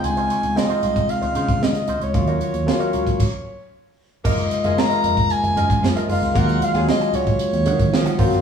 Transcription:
<<
  \new Staff \with { instrumentName = "Soprano saxophone" } { \time 4/4 \key ees \dorian \tempo 4 = 114 aes''4 ees''4 f''4 ees''8. des''16~ | des''2. r4 | ees''4 bes''4 aes''4 r8 f''8 | ges''8 f''8 ees''8 des''2 r8 | }
  \new Staff \with { instrumentName = "Clean electric guitar" } { \time 4/4 \key ees \dorian r16 <ees' f' c''>16 <ees' f' des''>16 r8 <ees' f' c''>16 <ees' f' c''>16 r8 <ees' f' c''>16 <ees' f' c''>16 r8. <ees' f' c''>16 r16 | r16 <ges' bes' des''>16 <ges' bes' des''>16 r8 <ges' bes' des''>16 <ges' bes' des''>16 r2 r16 | <f' bes' ees''>16 r8 <f' bes' ees''>16 r16 <f' bes' ees''>16 <f' bes' ees''>16 r8. <f' bes' ees''>16 r8 <f' bes' ees''>16 <f' bes' ees''>16 r16 | <aes' des'' ges''>16 r8 <aes' des'' ges''>16 r16 <aes' des'' aes''>16 <aes' des'' ges''>16 r8. <aes' des'' ges''>16 r8 <aes' des'' ges''>16 <ges' c'' ges''>16 r16 | }
  \new Staff \with { instrumentName = "Horn section" } { \time 4/4 \key ees \dorian r1 | r1 | <bes bes'>8 r16 <aes aes'>8. r4. <f f'>8 r8 | <bes bes'>8 r16 <aes aes'>8. r4. <f f'>8 r8 | }
  \new Staff \with { instrumentName = "Tine electric piano" } { \time 4/4 \key ees \dorian <aes c' ees' f'>8. r16 <aes c' ees' f'>4. r4. | <ges bes des' f'>8. r16 <ges bes des' f'>4 r2 | <aes bes ees' f'>8 r16 <aes bes ees' f'>4. r4 r16 <aes bes ees' f'>16 r16 | <ges aes des' f'>8 r16 <ges aes des' f'>4. r4 r16 <ges bes c' f'>8 | }
  \new Staff \with { instrumentName = "Fretless electric bass" } { \clef bass \time 4/4 \key ees \dorian des,8 r16 des,16 r8 c,8 r16 des,16 des8 des16 r16 des,16 des,16 | ees,8 r16 ees,16 r8 des,8 r2 | ges,,8 r16 ges,,16 r8 f,,8 r16 ges,,16 ges,8 ges,16 r16 ges,,16 des,16 | ees,8 r16 ees,16 r8 des,8 r16 ees,16 ees8 ees16 r16 aes,,16 ges,,16 | }
  \new DrumStaff \with { instrumentName = "Drums" } \drummode { \time 4/4 hh16 hh16 hh16 hh16 sn16 hh16 hh16 <hh bd>16 hh16 hh16 hh16 <hh bd>16 sn16 <hh sn>16 hh16 hh16 | <hh bd>16 hh16 hh16 hh16 sn16 hh16 hh16 <hh bd>16 <cymc bd>4 r4 | <cymc bd>16 hh16 hh16 hh16 sn16 hh16 hh16 <hh bd>16 hh16 hh16 hh16 <hh bd>16 sn16 hh16 hho16 <hh sn>16 | <hh bd>16 hh16 hh16 hh16 sn16 hh16 hh16 <hh bd>16 hh16 hh16 hh16 <hh bd>16 sn16 <hh sn>16 <hho bd>16 <hh sn>16 | }
>>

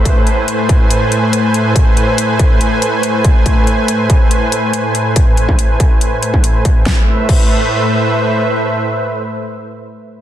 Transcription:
<<
  \new Staff \with { instrumentName = "Supersaw synth" } { \time 4/4 \key a \minor \tempo 4 = 141 <a, a b' c'' gis''>1~ | <a, a b' c'' gis''>1~ | <a, a b' c'' gis''>1~ | <a, a b' c'' gis''>1 |
<a, a b' c'' e''>1~ | <a, a b' c'' e''>1 | }
  \new DrumStaff \with { instrumentName = "Drums" } \drummode { \time 4/4 <hh bd>8 hh8 hh8 <hh bd>8 hh8 hh8 hh8 hh8 | <hh bd>8 hh8 hh8 <hh bd>8 hh8 hh8 hh8 <hh bd>8 | <hh bd>8 hh8 hh8 <hh bd>8 hh8 hh8 hh8 hh8 | <hh bd>8 hh16 bd16 hh8 <hh bd>8 hh8 hh16 bd16 hh8 <hh bd>8 |
<bd sn>4 <cymc bd>4 r4 r4 | r4 r4 r4 r4 | }
>>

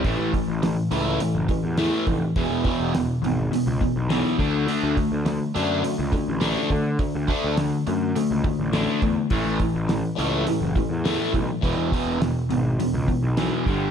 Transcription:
<<
  \new Staff \with { instrumentName = "Overdriven electric guitar" } { \clef bass \time 4/4 \key e \dorian \tempo 4 = 104 <a, e a>8 <a, e>8 <a, e>8 <a, e a>8 <a, e>8 <a, e>8 <a, e a>8 <a, e>8 | <e, b, e>8 <e, b, e>8 <e, b,>8 <e, b,>8 <e, b,>8 <e, b,>8 <e, b, e>8 <d a d'>8 | <d a d'>8 <d a>8 <d a>8 <d a d'>8 <d a>8 <d a>8 <d a d'>8 <d a>8 | <d a>8 <d a d'>8 <d a>8 <d a>8 <d a>8 <d a>8 <d a d'>8 <d a>8 |
<a, e a>8 <a, e>8 <a, e>8 <a, e a>8 <a, e>8 <a, e>8 <a, e a>8 <a, e>8 | <e, b, e>8 <e, b, e>8 <e, b,>8 <e, b,>8 <e, b,>8 <e, b,>8 <e, b, e>8 <g, d g>8 | }
  \new Staff \with { instrumentName = "Overdriven electric guitar" } { \clef bass \time 4/4 \key e \dorian <a, e a>8 <a, e>8 <a, e>8 <a, e a>8 <a, e>8 <a, e>8 <a, e a>8 <a, e>8 | <e, b, e>8 <e, b, e>8 <e, b,>8 <e, b,>8 <e, b,>8 <e, b,>8 <e, b, e>8 <d a d'>8 | <d a d'>8 <d a>8 <d a>8 <d a d'>8 <d a>8 <d a>8 <d a d'>8 <d a>8 | <d a>8 <d a d'>8 <d a>8 <d a>8 <d a>8 <d a>8 <d a d'>8 <d a>8 |
<a, e a>8 <a, e>8 <a, e>8 <a, e a>8 <a, e>8 <a, e>8 <a, e a>8 <a, e>8 | <e, b, e>8 <e, b, e>8 <e, b,>8 <e, b,>8 <e, b,>8 <e, b,>8 <e, b, e>8 <g, d g>8 | }
  \new Staff \with { instrumentName = "Picked electric bass" } { \clef bass \time 4/4 \key e \dorian a,,16 a,,16 r16 a,,8 r16 cis,8 r16 fis,,16 r16 e,8 r16 f,,16 r16 | e,,16 e,,16 r16 e,,8 r16 gis,,8 r16 cis,16 r16 b,,8 r16 d,8 | r16 d,16 r16 d,8 r16 fis,8 r16 cis,16 r16 a,,8 r16 d8 | r16 d,16 r16 d,8 r16 fis,8 r16 cis,16 r16 a,,8 r16 e,16 r16 |
a,,16 a,,16 r16 a,,8 r16 cis,8 r16 fis,,16 r16 e,8 r16 b,,16 r16 | e,,16 e,,16 r16 e,,8 r16 gis,,8 r16 cis,16 r16 b,,8 r16 g,,8 | }
  \new DrumStaff \with { instrumentName = "Drums" } \drummode { \time 4/4 <hho bd>8 <hho bd>8 <hho sn>8 hho8 hho8 <hho bd>8 <hho sn>8 <hho bd>8 | <hho bd>8 <hho bd>8 <hho sn>8 hho8 hho8 <hho bd>8 <hho sn>8 <hho bd>8 | hho8 <hho bd>8 <hho sn>8 hho8 hho8 <hho bd>8 <hho sn>8 <hho bd>8 | <hho bd>8 <hho bd>8 <hho sn>8 hho8 hho8 <hho bd>8 <hho sn>8 <hho bd>8 |
<hho bd>8 <hho bd>8 <hho sn>8 hho8 hho8 <hho bd>8 <hho sn>8 <hho bd>8 | <hho bd>8 <hho bd>8 <hho sn>8 hho8 hho8 <hho bd>8 <hho sn>8 <hho bd>8 | }
>>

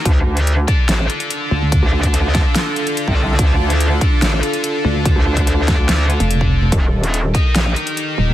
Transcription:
<<
  \new Staff \with { instrumentName = "Distorted electric guitar" } { \time 4/4 \key d \phrygian \tempo 4 = 144 r4. <d' a' d''>2~ <d' a' d''>8~ | <d' a' d''>4. <d' a' d''>2~ <d' a' d''>8~ | <d' a' d''>4. <d' a' d''>2~ <d' a' d''>8~ | <d' a' d''>4. <d' a' d''>2~ <d' a' d''>8 |
r4. <ees' bes' ees''>2~ <ees' bes' ees''>8 | }
  \new Staff \with { instrumentName = "Ambient pad" } { \time 4/4 \key d \phrygian <d d' f' a'>1~ | <d d' f' a'>1~ | <d d' f' a'>1~ | <d d' f' a'>1 |
<ees ees' g' bes'>1 | }
  \new Staff \with { instrumentName = "Wobble bass" } { \clef bass \time 4/4 \key d \phrygian d,8 d,4 r8 a,,8 r4. | r16 d,4. r4. c,8. | d,8 d,4 r8 a,,8 r4. | r16 d,4. d,4 r4 r16 |
ees,,8 ees,,4 r8 bes,,8 r4. | }
  \new Staff \with { instrumentName = "Wobble bass" } { \clef bass \time 4/4 \key d \phrygian r2. r8 d,8~ | d,16 r2. r8. | r2. r8 d,8~ | d,16 r2 r8 f,,4~ f,,16 |
r2. r8 ees,,8 | }
  \new DrumStaff \with { instrumentName = "Drums" } \drummode { \time 4/4 <hh bd>8. hh16 hh8 <hh bd>8 <hh sn>8 hh16 hh16 hh4 | <hh bd>8. <hh bd>16 hh8 <hh bd sn>8 <hh sn>8 hh16 hh16 hh16 bd8. | <hh bd>8. hh16 hh8 <hh bd>8 <hh sn>8 hh16 hh16 hh4 | <hh bd>8. <hh bd>16 hh8 <hh bd sn>8 <hh sn>8 hh16 hh16 hh16 bd8. |
<hh bd>8. hh16 hh8 <hh bd>8 <hh sn>8 hh16 hh16 hh4 | }
>>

